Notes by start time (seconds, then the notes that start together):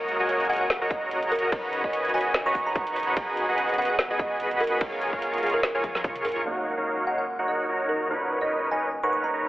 Already playing: D#1 C#3 F#3 C#4 D#4 F#4 A#4 C#5 D#5 A#5
0.08 closed hi-hat
0.20 D#1 F#4 A#4 C#5 D#5 G#5
0.29 closed hi-hat
0.40 closed hi-hat
0.45 closed hi-hat
0.49 D#1 F#4 A#4 C#5 D#5 F#5 G#5, closed hi-hat
0.53 closed hi-hat
0.56 closed hi-hat
0.61 F#5
0.70 snare, closed hi-hat
0.81 D#1 F#4 A#4 C#5 D#5 A#5
0.91 D#5, kick, closed hi-hat
1.11 D#1 F#4 A#4 C#5 D#5 A#5, closed hi-hat
1.23 closed hi-hat
1.32 A#4, closed hi-hat, open hi-hat
1.39 closed hi-hat
1.52 D#1 B3 D#4 F#4 B4 C#5 D#5 A#5, kick, closed hi-hat, ride
1.73 closed hi-hat
1.84 D#1 F#4 B4 C#5 D#5 G#5, kick
1.93 closed hi-hat
2.05 closed hi-hat
2.09 closed hi-hat
2.14 D#1 F#4 B4 C#5 D#5 G#5, closed hi-hat
2.18 closed hi-hat
2.21 closed hi-hat
2.34 snare, closed hi-hat
2.46 D#1 F#4 B4 C#5 D#5 A#5 C#6
2.55 C#6, kick, closed hi-hat
2.66 A#5
2.76 D#1 F#4 B4 C#5 D#5 C#6, kick, closed hi-hat
2.87 closed hi-hat
2.96 closed hi-hat, open hi-hat
3.03 closed hi-hat
3.17 D#1 D#3 G#3 B3 F#4 G#4 B4 D#5 G#5, kick, closed hi-hat, ride
3.37 closed hi-hat
3.49 D#1 F#4 G#4 B4 D#5 F#5
3.58 closed hi-hat
3.69 closed hi-hat
3.74 closed hi-hat
3.78 D#1 F#4 G#4 B4 D#5 F#5, closed hi-hat
3.82 closed hi-hat
3.85 closed hi-hat
3.90 F#5
3.99 snare, closed hi-hat
4.10 D#1 F#4 G#4 B4 D#5 G#5
4.19 D#5, kick, closed hi-hat
4.40 D#1 F#4 G#4 B4 D#5 B5, closed hi-hat
4.51 closed hi-hat
4.60 A#4, closed hi-hat, open hi-hat
4.67 closed hi-hat
4.81 D#1 C#3 A#3 F4 G#4 A#4 C#5 G#5, kick, closed hi-hat, ride
4.92 C#5
5.02 closed hi-hat
5.13 D#1 F4 G#4 A#4 C#5 F5, kick
5.22 closed hi-hat
5.34 closed hi-hat
5.38 closed hi-hat
5.43 D#1 F4 G#4 A#4 C#5 F5, closed hi-hat
5.47 closed hi-hat
5.50 closed hi-hat
5.54 A#4
5.63 snare, closed hi-hat
5.75 D#1 F4 G#4 A#4 C#5 G#5
5.84 C#5, kick, closed hi-hat, high tom
5.95 snare, high tom
6.04 D#1 F4 G#4 A#4 C#5 C#6, kick, closed hi-hat, mid tom
6.16 closed hi-hat, mid tom
6.25 A#4, closed hi-hat, mid tom, open hi-hat
6.32 closed hi-hat
6.36 mid tom
6.44 D#2 A#2 C#3 F#3 A#3 C#4 D#4 F#4 A#4 C#5 F#5, sub drop
6.48 F5
6.77 D#4 F#4 A#4 C#5 F5
7.07 D#4 F#4 A#4 C#5 F5 F#5
7.18 F#5
7.39 D#4 F#4 A#4 C#5 F#5
7.48 D#5
7.68 D#4 F#4 A#4 C#5 A#5
7.89 A#4
8.08 D#2 A#2 C#3 D#3 F#3 C#4 D#4 A#4 B4 C#5 F#5
8.12 D#4
8.41 D#4 A#4 B4 C#5 D#5
8.71 D#4 A#4 B4 C#5 D#5 G#5
9.03 D#4 A#4 B4 C#5 F#5 C#6
9.12 C#6
9.24 A#5
9.33 D#4 A#4 B4 C#5 A#5